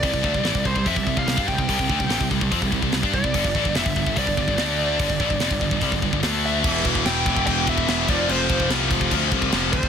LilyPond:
<<
  \new Staff \with { instrumentName = "Lead electric guitar" } { \time 4/4 \key e \phrygian \tempo 4 = 145 d''4. c''8 e''8. f''8. g''8~ | g''4. r2 d''8~ | d''4 e''4 d''2~ | d''2. r8 e''8~ |
e''8 r8 g''4 g''8 e''4 d''8 | c''4 r2 r8 c''8 | }
  \new Staff \with { instrumentName = "Distorted electric guitar" } { \clef bass \time 4/4 \key e \phrygian <c g>16 <c g>16 <d a>16 <c g>16 <a, e>16 <c g>16 <c g>16 <c g>16 <f c'>16 <c g>16 <c g>16 <c g>16 <c g>16 <g d'>16 <c g>16 <c g>16 | <c g>16 <c g>16 <d a>16 <c g>16 <a, e>16 <c g>16 <c g>16 <c g>16 <f c'>16 <c g>16 <c g>16 <c g>16 <c g>16 <g d'>16 <c g>16 <c g>16 | <g, d>16 <g, d>16 <a, e>16 <g, d>16 <f, c>16 <g, d>16 <g, d>16 <g, d>16 <c g>16 <g, d>16 <g, d>16 <g, d>16 <d a d'>4 | <g, d>16 <g, d>16 <a, e>16 <g, d>16 <f, c>16 <g, d>16 <g, d>16 <g, d>16 <c g>16 <g, d>16 <g, d>16 <g, d>16 <d a d'>4 |
<e, b, e>2~ <e, b, e>8 <e, b, e>8 <e, b, e>8 <f, c f>8~ | <f, c f>2 <f, c f>8 <f, c f>4 r8 | }
  \new Staff \with { instrumentName = "Distorted electric guitar" } { \clef bass \time 4/4 \key e \phrygian <c g>16 <c g>16 <d a>16 <c g>16 <a, e>16 <c g>16 <c g>16 <c g>16 <f c'>16 <c g>16 <c g>16 <c g>16 <c g>16 <g d'>16 <c g>16 <c g>16 | <c g>16 <c g>16 <d a>16 <c g>16 <a, e>16 <c g>16 <c g>16 <c g>16 <f c'>16 <c g>16 <c g>16 <c g>16 <c g>16 <g d'>16 <c g>16 <c g>16 | <g, d>16 <g, d>16 <a, e>16 <g, d>16 <f, c>16 <g, d>16 <g, d>16 <g, d>16 <c g>16 <g, d>16 <g, d>16 <g, d>16 <d a d'>4 | <g, d>16 <g, d>16 <a, e>16 <g, d>16 <f, c>16 <g, d>16 <g, d>16 <g, d>16 <c g>16 <g, d>16 <g, d>16 <g, d>16 <d a d'>4 |
<e, b, e>2.~ <e, b, e>8 <f, c f>8~ | <f, c f>2. <f, c f>8 r8 | }
  \new Staff \with { instrumentName = "Distorted electric guitar" } { \clef bass \time 4/4 \key e \phrygian r1 | r1 | r1 | r1 |
<e, b, e>4 <e, b, e>8 <e, b, e>8 <e, b, e>4 <e, b, e>8 <f, c f>8 | <f, c f>4 <f, c f>8 <f, c f>8 <f, c f>4 <f, c f>8 <f, c f>8 | }
  \new Staff \with { instrumentName = "Picked electric bass" } { \clef bass \time 4/4 \key e \phrygian c,16 c,16 d,16 c,16 a,,16 c,16 c,16 c,16 f,16 c,16 c,16 c,16 c,16 g,16 c,16 c,16 | c,16 c,16 d,16 c,16 a,,16 c,16 c,16 c,16 f,16 c,16 c,16 c,16 c,16 g,16 c,16 c,16 | g,,16 g,,16 a,,16 g,,16 f,,16 g,,16 g,,16 g,,16 c,16 g,,16 g,,16 g,,16 d,4 | g,,16 g,,16 a,,16 g,,16 f,,16 g,,16 g,,16 g,,16 c,16 g,,16 g,,16 g,,16 d,4 |
e,,8 e,,8 e,,8 e,,8 e,,4 e,,8 f,,8 | f,,8 f,,8 c,8 f,,8 d,8 c,8 f,,8 d,8 | }
  \new DrumStaff \with { instrumentName = "Drums" } \drummode { \time 4/4 <hho bd>16 bd16 bd16 bd16 <hho sn>16 bd16 bd16 bd16 <hho bd>16 bd16 bd16 bd16 <hho sn>16 bd16 bd16 bd16 | <hho bd>16 bd16 bd16 bd16 <hho sn>16 bd16 bd16 bd16 <hho bd>16 bd16 bd16 bd16 <hho sn>16 bd16 bd16 bd16 | <hho bd>16 bd16 bd16 bd16 <hho sn>16 bd16 bd16 bd16 <hho bd>16 bd16 bd16 bd16 <hho sn>4 | <hho bd>16 bd16 bd16 bd16 <hho sn>16 bd16 bd16 bd16 <hho bd>16 bd16 bd16 bd16 <hho sn>4 |
<cymc bd>8 <cymc bd>16 bd16 <cymc sn>8 <cymc bd>16 bd16 <cymc bd>8 <cymc bd>16 bd16 <cymc sn>8 <cymc bd>8 | cymc8 <cymc bd>16 bd16 <cymc sn>8 <cymc bd>16 bd16 <cymc bd>8 <cymc bd>16 bd16 <cymc sn>8 <cymc bd>16 bd16 | }
>>